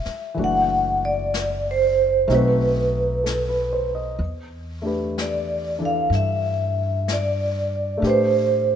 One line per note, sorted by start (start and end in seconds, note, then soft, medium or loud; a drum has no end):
0.00 0.33 E3 medium
0.00 0.35 A3 soft
0.00 0.36 D4 soft
0.00 0.39 G4 medium
0.00 0.46 E5 medium
0.05 muted upright bass stroke soft
0.05 snare soft
0.34 2.25 F#1 medium
0.34 2.27 E3 soft
0.34 2.26 A3 soft
0.34 2.28 D4 soft
0.34 brush sweep soft
0.39 2.29 F#4 soft
0.44 1.06 F#5 medium
1.05 1.68 D5 medium
1.34 brush sweep soft
1.34 snare soft
1.34 hi-hat pedal soft
1.71 2.33 C5 medium
2.28 4.15 B1 medium
2.28 4.19 A3 medium
2.28 4.20 C4 soft
2.28 4.20 D#4 soft
2.28 brush sweep soft
2.28 snare soft
2.32 4.21 F#4 medium
2.32 3.87 B4 medium
3.24 3.69 A4 soft
3.24 brush sweep soft
3.24 snare soft
3.24 hi-hat pedal soft
3.49 3.89 B4 soft
3.73 4.02 C5 soft
3.95 4.28 D#5 soft
4.19 6.06 E2 medium
4.19 brush sweep soft
4.82 7.96 A3 soft
4.82 5.77 D4 soft
4.82 8.02 G4 soft
4.86 8.04 B4 soft
5.18 5.84 D5 medium
5.18 brush sweep soft
5.18 snare soft
5.18 hi-hat pedal medium
5.79 8.03 E3 soft
5.79 7.99 D4 soft
5.79 8.04 A4 soft
5.85 6.12 F5 medium
6.10 7.98 G2 medium
6.10 brush sweep soft
6.10 snare soft
6.15 7.11 E5 medium
7.08 brush sweep soft
7.08 snare soft
7.08 hi-hat pedal soft
7.13 8.04 D5 medium
7.97 8.76 A3 medium
7.97 8.76 D4 soft
8.02 8.76 A2 medium
8.02 8.76 G4 soft
8.02 8.07 B4 medium
8.02 brush sweep soft
8.02 snare soft
8.07 8.76 C5 medium